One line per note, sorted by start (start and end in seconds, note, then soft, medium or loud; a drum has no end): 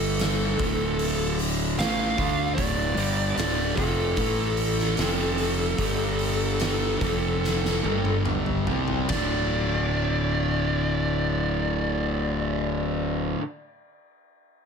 0.00 0.55 G1 medium
0.00 0.58 G2 medium
0.00 0.59 D3 loud
0.00 0.59 G3 loud
0.00 1.35 A4 medium
0.19 snare loud
0.19 open hi-hat medium
0.59 1.75 D1 medium
0.59 1.77 D2 medium
0.59 1.78 A2 medium
0.59 1.78 D3 medium
0.59 kick loud
0.59 open hi-hat medium
0.99 open hi-hat medium
1.39 open hi-hat medium
1.78 2.15 A1 loud
1.78 2.17 A2 medium
1.78 2.18 E3 medium
1.78 2.18 A3 loud
1.78 2.54 F5 loud
1.78 snare loud
1.78 open hi-hat medium
2.18 2.55 D2 medium
2.18 2.57 D3 medium
2.18 2.57 A3 loud
2.18 2.57 D4 loud
2.18 kick loud
2.18 open hi-hat medium
2.55 2.95 D1 medium
2.55 2.96 D2 medium
2.55 2.97 A2 loud
2.55 2.96 D3 loud
2.55 3.35 D5 loud
2.55 kick loud
2.55 open hi-hat medium
2.97 3.35 G1 loud
2.97 3.36 G2 medium
2.97 3.36 D3 loud
2.97 3.37 G3 loud
2.97 open hi-hat medium
3.36 3.74 D1 medium
3.36 3.76 D2 medium
3.36 3.77 A2 loud
3.36 3.77 D3 medium
3.36 3.78 D5 loud
3.36 snare loud
3.36 open hi-hat medium
3.75 4.15 F1 loud
3.75 4.16 F2 medium
3.75 4.16 C3 medium
3.75 4.17 F3 medium
3.75 8.21 A4 medium
3.75 kick loud
3.75 open hi-hat medium
4.17 4.94 A1 medium
4.17 4.97 A2 medium
4.17 4.97 E3 loud
4.17 4.97 A3 loud
4.17 kick loud
4.17 open hi-hat medium
4.57 open hi-hat medium
4.79 snare soft
4.97 5.75 F1 loud
4.97 5.78 F2 medium
4.97 5.78 C3 medium
4.97 5.79 F3 medium
4.97 snare loud
4.97 open hi-hat medium
5.38 open hi-hat medium
5.78 6.97 G1 medium
5.78 7.01 G2 medium
5.78 7.01 D3 medium
5.78 7.01 G3 loud
5.78 kick loud
5.78 open hi-hat medium
6.19 open hi-hat medium
6.60 snare loud
6.60 open hi-hat medium
7.01 7.80 F1 medium
7.01 7.84 F2 medium
7.01 7.84 C3 medium
7.01 7.84 F3 medium
7.01 kick loud
7.01 open hi-hat medium
7.44 snare medium
7.65 snare medium
7.84 8.65 G1 medium
7.84 8.67 G2 medium
7.84 8.67 D3 medium
7.84 8.67 G3 loud
7.84 high tom medium
8.05 high tom medium
8.25 mid tom medium
8.46 mid tom medium
8.67 9.08 C2 medium
8.67 9.09 C3 medium
8.67 9.09 G3 medium
8.67 9.10 C4 medium
8.67 floor tom medium
8.88 floor tom medium
9.09 13.34 D1 medium
9.09 13.39 D2 medium
9.09 13.41 A2 medium
9.09 13.26 D5 medium
9.09 kick medium
9.09 snare medium
9.09 ride bell medium
9.14 13.42 D3 medium